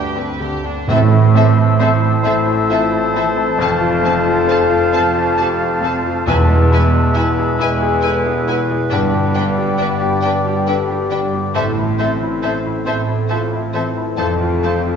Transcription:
Already playing: D2 G2 C3 D3 B3 C4 D4 G4 B4 G5
0.16 C4 D4 B4
0.41 D3 G4
0.64 B3 D4
0.87 A1 A2 C4 A4 C5 E5 A5
1.11 E3 E4
1.35 A3 C4 A4 E5
1.57 C4 E4
1.80 C4 E4 A4 C5 E5
2.02 E4 A4
2.23 A1 A2 C4 E4 A4 C5 E5
2.46 E4 A4
2.69 C4 E4 F4 A4 E5
2.92 C4 E4
3.13 E3 C4 A4 E5
3.37 A3 E4
3.58 F1 F2 C4 A4 F5 A5
3.80 C3 F4
4.03 A3 C4 A4 A5
4.25 F4
4.47 C4 A4 C5 A5
4.70 C4 F4
4.93 F1 F2 C4 C5 A5
4.97 A4
5.15 C4 F4
5.37 C4 G4 A4 A5
5.60 C4 F4
5.81 C3 C4 A4 A5
6.04 A3 F4
6.27 E1 E2 G#3 B3 E4 B4 E5 G#5
6.49 B2 G#3
6.71 G#3 E4 B4 G#5
6.94 G#3 E4
7.14 E4 B4 E5 G#5
7.38 G#4
7.58 E1 E2 E4 B4 E5 G#5
7.83 G#4
8.02 E4 A4 B4 G#5
8.26 E4 G#4
8.47 B2 E4 G#5
8.51 B4
8.70 G#3 G#4
8.90 G1 G2 D4 G4 B4 D5 G5
9.13 D3 G4
9.34 B3 D4 B4 G5
9.57 D4 G4
9.78 D4 B4 D5 G5
10.01 D4 G4
10.22 G1 G2 D4 B4 D5 G5
10.45 D4 G4
10.66 D4 A4 B4 G5
10.88 D4 G4
11.10 D3 D4 B4 G5
11.32 B3 G4
11.54 A1 A2 C4 A4 C5 E5
11.76 E3 E4
11.98 A3 C4 A4 C5 E5
12.21 C4 E4
12.42 C4 A4 C5 E5
12.64 E4 A4
12.86 A1 A2 C4 A4 C5 E5
13.07 E4 A4
13.28 C4 F4 A4 C5 E5
13.51 C4 E4
13.73 E3 C4 A4 C5 E5
13.96 A3 E4
14.17 F1 F2 C4 A4 C5 F5 A5
14.41 C3 F4
14.61 A3 C4 A4 F5 A5
14.65 C5
14.85 C4 F4

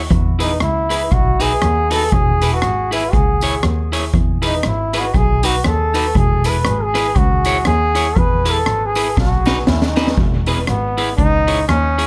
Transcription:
0.11 E2, kick, hi-hat pedal
0.39 D#4 E4 G#4 B4, open hi-hat, tambourine
0.60 C#2 E4, cross-stick, hi-hat pedal
0.89 E4 G#4 B4, open hi-hat, tambourine
1.12 B1 F#4, kick, hi-hat pedal
1.40 D#4 F#4 G#4 B4, open hi-hat, tambourine
1.62 D#2, cross-stick, hi-hat pedal
1.90 D#4 F#4 A4 B4, open hi-hat, tambourine
2.12 E1 G#4, kick, hi-hat pedal
2.41 E4 G#4 B4, open hi-hat, tambourine
2.53 F#4
2.62 G#1, cross-stick, hi-hat pedal
2.91 E4 G#4 B4, open hi-hat, tambourine
3.13 C#2 G#4, kick, hi-hat pedal
3.41 E4 G#4 C#5, open hi-hat, tambourine
3.63 D#2, muted clean electric guitar stroke, cross-stick, hi-hat pedal
3.92 E4 G#4 C#5, open hi-hat, tambourine
4.14 E2, kick, hi-hat pedal
4.42 E4 G#4 B4, open hi-hat, tambourine
4.46 D#4
4.63 G#1, cross-stick, hi-hat pedal
4.67 E4
4.93 E4 G#4 B4, open hi-hat, tambourine
5.00 F#4
5.14 B1 G#4, kick, hi-hat pedal
5.43 D#4 F#4 B4, open hi-hat, tambourine
5.64 D#2 A4, cross-stick, hi-hat pedal
5.94 D#4 F#4 B4, open hi-hat, tambourine
6.15 E1 G#4, kick, hi-hat pedal
6.44 E4 G#4 B4, open hi-hat, tambourine
6.50 B4
6.65 G#1, cross-stick, hi-hat pedal
6.83 G#4
6.94 E4 G#4 B4, cross-stick, open hi-hat, tambourine
7.15 C#2 F#4, kick, hi-hat pedal
7.45 E4 G#4 C#5, open hi-hat, tambourine
7.65 D#2 G#4, muted clean electric guitar stroke, cross-stick, hi-hat pedal
7.95 E4 G#4 C#5, open hi-hat, tambourine
8.16 E2 B4, kick, hi-hat pedal
8.45 E4 G#4 B4, open hi-hat, tambourine
8.52 A4
8.66 G#1, cross-stick, hi-hat pedal
8.86 G#4
8.95 E4 G#4 B4, open hi-hat, tambourine
9.17 B1 F#4, kick, snare
9.45 D#4 F#4 B4, snare, tambourine
9.67 D#2 E4, snare
9.82 snare
9.86 D#4
9.96 D#4 F#4 B4, snare, tambourine
10.07 snare
10.18 E1, kick
10.46 E4 G#4 B4, open hi-hat
10.67 G#1 B3, cross-stick, hi-hat pedal
10.97 E4 G#4 B4, open hi-hat
11.17 C#2 D#4, kick, hi-hat pedal
11.47 E4 G#4 C#5, open hi-hat
11.68 D#2 C#4, muted clean electric guitar stroke, cross-stick, hi-hat pedal
11.98 E4 G#4 C#5, open hi-hat

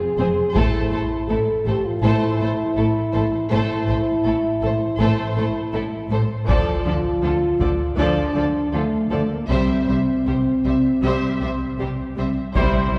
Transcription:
Already playing: G#4
0.18 F1 F2 C4 G#4 C5
0.55 A1 A2 A3 E4 A4 C5, taiko
0.91 A1 A2 A3 A4 C5
1.28 A1 A2 A3 E4 A4
1.66 A1 A2 A3 G4 A4 C5
1.85 F4
2.03 A1 A2 A3 E4 A4 C5
2.41 A1 A2 A3 A4 C5
2.77 A1 A2 A3 E4 A4
3.13 A1 A2 A3 A4 C5
3.50 A1 A2 A3 E4 A4 C5
3.88 A1 A2 A3 A4 C5
4.25 A1 A2 A3 E4 A4
4.62 A1 A2 A3 A4 C5
4.99 A1 A2 A3 E4 A4 C5
5.36 A1 A2 A3 A4 C5
5.74 A1 A2 A3 E4 A4
6.11 A1 A2 A3 A4 C5
6.47 D2 D3 F3 F4 A4 D5, taiko
6.85 D2 D3 F3 A4 D5
7.22 D2 D3 F3 F4 A4
7.60 D2 D3 F3 A4 D5, taiko
7.97 D2 D3 F3 D4 A4 D5
8.35 D2 D3 F3 A4 D5
8.72 D2 D3 F3 A3 F4 A4
9.10 D2 D3 F3 A3 A4 D5
9.31 A#3
9.48 C2 C3 G3 C4 C5 E5
9.88 C2 C3 G3 C5 E5
10.26 C2 C3 G3 G4 C5
10.64 C2 C3 G3 C5 E5
11.03 C2 C3 G3 C5 E5
11.40 C2 C3 G3 C5 E5
11.79 C2 C3 G3 G4 C5
12.17 C2 C3 G3 C5 E5
12.55 C2 C3 G3 E4 C5, taiko
12.93 G3 E4 C5

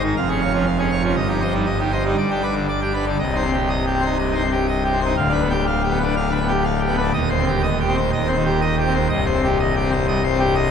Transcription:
Already playing: G#1 G#2
0.04 D#3 D#4
0.17 F1 F2 F5
0.29 C#4 G#4
0.41 C#5 F5
0.53 F3 C#4
0.66 F5
0.79 C#4 G#4
0.91 C#5 F5
1.03 F3 C#4
1.16 G1 G2 D#5
1.29 D#4 G4
1.42 C5 D#5
1.53 G3 D#4
1.66 D#5
1.79 D#4 G4
1.92 C5 D#5
2.05 G3 D#4
2.18 G1 G2 D5
2.31 D4 G4
2.43 B4 D5
2.55 D3 D4
2.68 D5
2.81 D4 G4
2.94 B4 D5
3.07 D3 D4
3.19 C1 C2 D#5
3.32 D#4
3.36 C5
3.44 C4
3.53 G4
3.69 D#5
3.86 G4
3.94 C4
4.02 D#4 C5
4.19 G2 D#5
4.31 D#4
4.35 C5
4.43 C4
4.51 G4
4.68 D#5
4.84 G4
4.92 C4
5.01 C5
5.06 D#4
5.17 D1 D2 F5
5.30 D4 B4
5.42 B3
5.50 G4
5.67 F5
5.84 G4
5.91 B3
5.99 D4 B4
6.16 D3 F5
6.28 D4
6.32 B4
6.40 B3
6.48 G4
6.64 F5
6.80 G4
6.89 B3
6.97 B4
7.01 D4
7.13 D#1 D#2 D#5
7.30 C5
7.38 C4
7.47 G4
7.63 D#5
7.80 G4
7.88 C4
7.96 C5
8.12 D#1 D#2 D#5
8.25 C4 C5
8.37 D#3
8.45 G4
8.61 D#5
8.78 G4
8.86 C4
8.94 C5
9.09 C1 C2 D#5
9.26 C5
9.35 C4
9.43 G4
9.60 D#5
9.76 G4
9.83 C4
9.92 C5
10.08 G2 D#5
10.24 C5
10.31 C4
10.39 G4
10.55 D#5

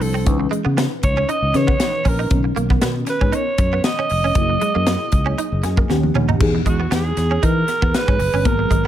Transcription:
Already playing: F3 D4 E4 C5
0.00 C2 A4, muted clean electric guitar stroke, open hi-hat
0.14 C4
0.26 C#2 E3 C#4 D#4 B4, kick, closed hi-hat
0.40 muted clean electric guitar stroke
0.51 G#3, closed hi-hat
0.65 C#3 B3
0.77 B3, snare, closed hi-hat
1.03 C#2 C#5, muted clean electric guitar stroke, kick, closed hi-hat
1.17 C#4
1.29 D#4 D#5, closed hi-hat
1.42 C#2
1.54 C#3 E3 C#4 D#4 B4 C#5, muted clean electric guitar stroke, snare, closed hi-hat
1.67 B3, kick
1.80 muted clean electric guitar stroke, snare, closed hi-hat
2.05 A#1 C#4 A#4, kick, open hi-hat
2.19 D#4
2.30 B1 C#3 B3 C#4 A#4, kick, closed hi-hat
2.37 D#3
2.44 muted clean electric guitar stroke
2.56 B1 A#3, closed hi-hat
2.70 B3, kick
2.82 B2 B3, snare, closed hi-hat
3.07 B4, muted clean electric guitar stroke, snare, closed hi-hat
3.21 G#2 C#4, kick
3.32 D#4 C#5, closed hi-hat
3.58 F#2, muted clean electric guitar stroke, kick, closed hi-hat
3.73 B3
3.84 D#5, snare, closed hi-hat
3.99 C#4
4.09 F1, muted clean electric guitar stroke, open hi-hat
4.24 C#4
4.35 F#1 F#3 A#3 E4 G#4, kick, closed hi-hat
4.49 muted clean electric guitar stroke
4.61 G#3, closed hi-hat
4.75 F#2 A#3
4.87 A#3, snare, closed hi-hat
5.12 C#2, muted clean electric guitar stroke, kick, closed hi-hat
5.26 C#4
5.38 D#4, closed hi-hat
5.52 F#1
5.63 F#2 G#5, muted clean electric guitar stroke, snare, closed hi-hat
5.77 A#3, kick
5.89 D#2 D#3 B3 C#4 G4 F#5, muted clean electric guitar stroke, snare
6.03 high tom
6.15 D#2 C#4, mid tom
6.29 D#4, floor tom
6.39 E2 E3 B3 D#4 G#4, kick, crash
6.55 muted clean electric guitar stroke
6.66 E2 G#3 F#4, kick, closed hi-hat
6.80 B3
6.91 E2 B3 G#4, snare, closed hi-hat
7.17 E2, muted clean electric guitar stroke, snare, closed hi-hat
7.31 C#4
7.43 E3 D#4 A#4, kick, closed hi-hat
7.68 muted clean electric guitar stroke, snare, closed hi-hat
7.82 E2 B3, kick
7.94 B4, snare, closed hi-hat
8.08 G#2 C#4, kick
8.19 F#1, muted clean electric guitar stroke, open hi-hat
8.33 G1 C#4
8.44 G#1 F#3 A#3 B3 G#4 A#4, kick, closed hi-hat
8.59 muted clean electric guitar stroke
8.71 G#1 G#3, kick, closed hi-hat

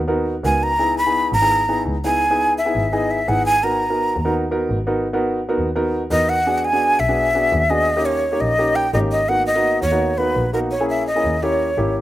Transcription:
Already playing: D#2
0.07 B3 D#4 F#4 A#4
0.44 C#2 B3 D#4 F#4 A#4 G#5
0.63 A#5
0.79 B3 D#4 E4 G#4
0.98 B5
1.06 B3 D#4 E4 G#4
1.32 G#1 A#5
1.41 B3 D#4 E4 G#4
1.68 B3 D#4 E4 G#4
1.86 C#2
2.04 B3 D#4 E4 G#4 G#5
2.30 B3 D#4 E4 G#4
2.58 E5
2.65 B3 D#4 E4 G#4
2.75 G#1
2.92 B3 D#4 E4 G#4 D#5
3.11 E5
3.28 G#1 B3 D#4 E4 G#4 F#5
3.46 G#5
3.63 B3 D#4 F#4 A#4 A#5
3.90 B3 D#4 F#4 A#4
4.16 D#2
4.25 B3 D#4 F#4 A#4
4.51 B3 D#4 F#4 A#4
4.70 G#1
4.87 B3 D#4 F#4 A#4
5.13 B3 D#4 F#4 A#4
5.49 B3 D#4 F#4 A#4
5.58 D#2
5.75 B3 D#4 F#4 A#4
6.11 E2 B3 D#4 F#4 A#4 D#5
6.29 F#5
6.46 B3 D4 F#4 G#4
6.58 F#5
6.65 G#5
6.73 B3 D4 F#4 G#4
6.99 B1 E5
7.08 B3 D4 F#4 G#4
7.35 B3 D4 F#4 G#4
7.52 D#2
7.70 B3 D4 F#4 G#4 D#5
7.96 A#3 C#4 D#4 G4
8.05 C#5
8.32 A#3 C#4 D#4 G4
8.41 A#1 D#5
8.58 A#3 C#4 D#4 G4
8.76 G5
8.94 G#1 A#3 C#4 D#4 G4 D#5
9.12 D#5
9.29 A#3 B3 D#4 F#4 F#5
9.46 D#5
9.55 A#3 B3 D#4 F#4
9.82 D#2 C#5
9.91 A#3 B3 D#4 F#4
10.18 A#3 B3 D#4 F#4 B4
10.35 A#1
10.53 A#3 B3 D#4 F#4 A#4
10.71 C#5
10.80 A#3 C#4 E4 G#4
10.90 E5
11.07 D#5
11.15 A#3 C#4 E4 G#4
11.24 D#2
11.42 A#3 C#4 E4 G4 C#5
11.77 G#1 A#3 C#4 E4 G4

